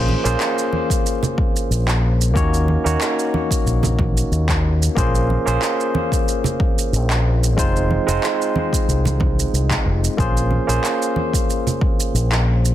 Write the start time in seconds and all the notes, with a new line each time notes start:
Already playing: A#1 A#3 C#4 F4 G#4 C5
0.09 high conga
0.24 A#1 A#3 C#4 F4 G#4 C5, shaker
0.40 clap, shaker
0.58 shaker
0.73 high conga
0.90 kick, shaker
1.06 shaker
1.23 low conga, shaker
1.38 kick
1.56 shaker
1.70 A#1, shaker
1.88 clap, shaker
2.21 shaker
2.34 D#2 A#3 C#4 D#4 F#4 C#5, kick, shaker
2.54 shaker
2.68 high conga
2.84 D#2 A#3 C#4 D#4 F#4 C#5, shaker
3.01 clap, shaker
3.19 shaker
3.34 high conga
3.51 kick, shaker
3.66 A#1, shaker
3.83 high conga, low conga, shaker
3.99 kick, high conga
4.17 shaker
4.31 D#2, shaker
4.49 kick, clap, shaker
4.83 shaker
4.95 A#1 A#3 C#4 F4 G#4 C5, kick, shaker
5.15 shaker
5.30 high conga
5.45 A#1 A#3 C#4 F4 G#4 C5, shaker
5.62 clap, shaker
5.80 shaker
5.95 high conga
6.12 kick, shaker
6.28 shaker
6.44 low conga, shaker
6.60 kick
6.78 shaker
6.92 A#1, shaker
7.10 clap, shaker
7.44 shaker
7.57 F1 G#3 C4 D#4 F4 C5, kick, shaker
7.76 shaker
7.90 high conga
8.07 F1 G#3 C4 D#4 F4 C5, shaker
8.24 clap, shaker
8.42 shaker
8.56 high conga
8.73 kick, shaker
8.88 C2, shaker
9.05 high conga, low conga, shaker
9.20 kick, high conga
9.39 shaker
9.53 C2, shaker
9.70 kick, clap, shaker
9.85 F1
10.04 shaker
10.17 A#1 A#3 C#4 F4 G#4 C5, kick, shaker
10.37 shaker
10.51 high conga
10.67 A#1 A#3 C#4 F4 G#4 C5, shaker
10.84 clap, shaker
11.02 shaker
11.16 high conga
11.33 kick, shaker
11.50 shaker
11.67 low conga, shaker
11.81 kick
12.00 shaker
12.14 A#1, shaker
12.32 clap, shaker
12.65 shaker